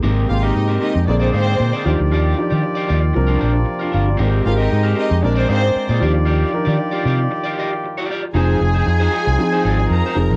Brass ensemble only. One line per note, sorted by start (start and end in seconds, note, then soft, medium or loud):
0.01 1.83 G#3 medium
0.01 1.06 C4 medium
0.01 1.06 G4 medium
1.06 1.84 A#3 medium
1.06 4.16 D5 medium
1.86 3.15 D#3 medium
1.86 4.18 F4 medium
1.86 3.15 G4 medium
3.15 4.19 C3 medium
3.15 4.19 A#3 medium
4.19 6.00 G#3 medium
4.19 5.23 C4 medium
4.19 5.22 G4 medium
5.23 6.00 A#3 medium
5.23 8.17 D5 medium
6.02 8.17 D#3 medium
6.02 8.17 F4 medium
6.02 8.17 G4 medium
8.34 10.36 F3 medium
8.34 10.36 C4 medium
8.34 10.36 D#4 medium
8.34 10.36 G#4 medium